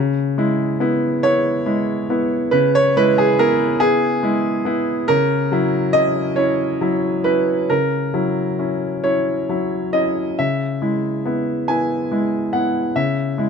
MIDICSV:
0, 0, Header, 1, 2, 480
1, 0, Start_track
1, 0, Tempo, 858369
1, 1408, Time_signature, 6, 3, 24, 8
1, 3804, Tempo, 892857
1, 5724, Tempo, 858369
1, 7469, End_track
2, 0, Start_track
2, 0, Title_t, "Grand piano"
2, 0, Program_c, 0, 0
2, 0, Note_on_c, 0, 49, 61
2, 55, Control_c, 0, 64, 127
2, 212, Note_on_c, 0, 56, 51
2, 216, Note_on_c, 0, 64, 55
2, 428, Note_off_c, 0, 56, 0
2, 430, Note_off_c, 0, 64, 0
2, 449, Note_on_c, 0, 59, 47
2, 452, Note_on_c, 0, 64, 56
2, 667, Note_off_c, 0, 59, 0
2, 669, Note_off_c, 0, 64, 0
2, 689, Note_on_c, 0, 73, 91
2, 692, Note_on_c, 0, 59, 49
2, 696, Note_on_c, 0, 64, 55
2, 909, Note_off_c, 0, 59, 0
2, 911, Note_off_c, 0, 64, 0
2, 929, Note_on_c, 0, 64, 55
2, 930, Note_on_c, 0, 56, 46
2, 1146, Note_off_c, 0, 64, 0
2, 1147, Note_off_c, 0, 56, 0
2, 1174, Note_on_c, 0, 64, 50
2, 1175, Note_on_c, 0, 59, 47
2, 1387, Note_off_c, 0, 49, 0
2, 1387, Note_off_c, 0, 64, 0
2, 1388, Note_off_c, 0, 59, 0
2, 1405, Note_on_c, 0, 71, 85
2, 1408, Note_off_c, 0, 73, 0
2, 1411, Note_on_c, 0, 49, 64
2, 1416, Control_c, 0, 64, 0
2, 1519, Control_c, 0, 64, 127
2, 1526, Note_off_c, 0, 71, 0
2, 1538, Note_on_c, 0, 73, 97
2, 1653, Note_off_c, 0, 73, 0
2, 1660, Note_on_c, 0, 56, 60
2, 1661, Note_on_c, 0, 71, 101
2, 1664, Note_on_c, 0, 64, 62
2, 1774, Note_off_c, 0, 71, 0
2, 1779, Note_on_c, 0, 68, 86
2, 1871, Note_off_c, 0, 56, 0
2, 1873, Note_off_c, 0, 64, 0
2, 1893, Note_off_c, 0, 68, 0
2, 1897, Note_on_c, 0, 70, 99
2, 1898, Note_on_c, 0, 59, 53
2, 1898, Note_on_c, 0, 64, 57
2, 2110, Note_off_c, 0, 59, 0
2, 2110, Note_off_c, 0, 64, 0
2, 2125, Note_on_c, 0, 68, 94
2, 2128, Note_on_c, 0, 64, 55
2, 2129, Note_on_c, 0, 59, 53
2, 2132, Note_off_c, 0, 70, 0
2, 2136, Control_c, 0, 64, 0
2, 2242, Control_c, 0, 64, 127
2, 2344, Note_off_c, 0, 59, 0
2, 2344, Note_off_c, 0, 64, 0
2, 2365, Note_on_c, 0, 56, 51
2, 2369, Note_on_c, 0, 64, 62
2, 2582, Note_off_c, 0, 56, 0
2, 2584, Note_off_c, 0, 64, 0
2, 2601, Note_on_c, 0, 59, 51
2, 2606, Note_on_c, 0, 64, 61
2, 2820, Note_off_c, 0, 59, 0
2, 2823, Note_off_c, 0, 64, 0
2, 2824, Note_off_c, 0, 49, 0
2, 2840, Note_on_c, 0, 70, 100
2, 2843, Note_off_c, 0, 68, 0
2, 2847, Note_on_c, 0, 49, 67
2, 2855, Control_c, 0, 64, 0
2, 2953, Control_c, 0, 64, 127
2, 3085, Note_on_c, 0, 54, 54
2, 3090, Note_on_c, 0, 64, 63
2, 3301, Note_off_c, 0, 54, 0
2, 3303, Note_off_c, 0, 64, 0
2, 3316, Note_on_c, 0, 75, 97
2, 3320, Note_off_c, 0, 70, 0
2, 3320, Note_on_c, 0, 61, 50
2, 3324, Note_on_c, 0, 64, 54
2, 3539, Note_off_c, 0, 61, 0
2, 3541, Note_off_c, 0, 64, 0
2, 3556, Note_on_c, 0, 73, 76
2, 3560, Note_off_c, 0, 75, 0
2, 3563, Note_on_c, 0, 61, 47
2, 3564, Note_on_c, 0, 64, 51
2, 3784, Note_off_c, 0, 61, 0
2, 3784, Note_off_c, 0, 64, 0
2, 3809, Note_on_c, 0, 54, 42
2, 3810, Note_on_c, 0, 64, 49
2, 4023, Note_off_c, 0, 54, 0
2, 4023, Note_off_c, 0, 64, 0
2, 4040, Note_off_c, 0, 73, 0
2, 4040, Note_on_c, 0, 71, 75
2, 4042, Note_on_c, 0, 64, 46
2, 4043, Note_on_c, 0, 61, 43
2, 4259, Note_off_c, 0, 64, 0
2, 4260, Note_off_c, 0, 61, 0
2, 4261, Note_off_c, 0, 49, 0
2, 4280, Note_off_c, 0, 71, 0
2, 4284, Note_on_c, 0, 70, 78
2, 4286, Note_on_c, 0, 49, 51
2, 4290, Control_c, 0, 64, 0
2, 4372, Control_c, 0, 64, 127
2, 4522, Note_on_c, 0, 54, 41
2, 4522, Note_on_c, 0, 64, 46
2, 4742, Note_off_c, 0, 54, 0
2, 4742, Note_off_c, 0, 64, 0
2, 4765, Note_on_c, 0, 61, 39
2, 4766, Note_on_c, 0, 64, 40
2, 4984, Note_off_c, 0, 61, 0
2, 4985, Note_off_c, 0, 64, 0
2, 5005, Note_on_c, 0, 73, 66
2, 5006, Note_off_c, 0, 70, 0
2, 5007, Note_on_c, 0, 61, 37
2, 5008, Note_on_c, 0, 64, 45
2, 5226, Note_off_c, 0, 61, 0
2, 5226, Note_off_c, 0, 64, 0
2, 5250, Note_on_c, 0, 54, 41
2, 5252, Note_on_c, 0, 64, 42
2, 5469, Note_off_c, 0, 54, 0
2, 5469, Note_off_c, 0, 64, 0
2, 5485, Note_on_c, 0, 75, 71
2, 5488, Note_off_c, 0, 73, 0
2, 5489, Note_on_c, 0, 61, 37
2, 5492, Note_on_c, 0, 64, 41
2, 5706, Note_off_c, 0, 61, 0
2, 5707, Note_off_c, 0, 64, 0
2, 5708, Note_off_c, 0, 49, 0
2, 5725, Note_off_c, 0, 75, 0
2, 5731, Note_on_c, 0, 49, 45
2, 5731, Note_on_c, 0, 76, 68
2, 5735, Control_c, 0, 64, 0
2, 5835, Control_c, 0, 64, 127
2, 5972, Note_on_c, 0, 56, 42
2, 5975, Note_on_c, 0, 64, 47
2, 6192, Note_off_c, 0, 56, 0
2, 6193, Note_off_c, 0, 64, 0
2, 6217, Note_on_c, 0, 59, 37
2, 6219, Note_on_c, 0, 64, 39
2, 6434, Note_off_c, 0, 59, 0
2, 6435, Note_off_c, 0, 64, 0
2, 6455, Note_on_c, 0, 80, 69
2, 6456, Note_off_c, 0, 76, 0
2, 6460, Note_on_c, 0, 59, 34
2, 6464, Note_on_c, 0, 64, 42
2, 6674, Note_off_c, 0, 59, 0
2, 6676, Note_off_c, 0, 64, 0
2, 6698, Note_on_c, 0, 56, 40
2, 6700, Note_on_c, 0, 64, 40
2, 6912, Note_off_c, 0, 56, 0
2, 6913, Note_off_c, 0, 64, 0
2, 6929, Note_on_c, 0, 78, 67
2, 6932, Note_off_c, 0, 80, 0
2, 6934, Note_on_c, 0, 59, 38
2, 6939, Note_on_c, 0, 64, 39
2, 7148, Note_off_c, 0, 59, 0
2, 7150, Note_off_c, 0, 49, 0
2, 7151, Note_off_c, 0, 64, 0
2, 7167, Note_on_c, 0, 49, 53
2, 7168, Note_off_c, 0, 78, 0
2, 7169, Note_on_c, 0, 76, 70
2, 7179, Control_c, 0, 64, 0
2, 7265, Control_c, 0, 64, 127
2, 7405, Note_on_c, 0, 56, 41
2, 7412, Note_on_c, 0, 64, 47
2, 7469, Note_off_c, 0, 49, 0
2, 7469, Note_off_c, 0, 56, 0
2, 7469, Note_off_c, 0, 64, 0
2, 7469, Note_off_c, 0, 76, 0
2, 7469, End_track
0, 0, End_of_file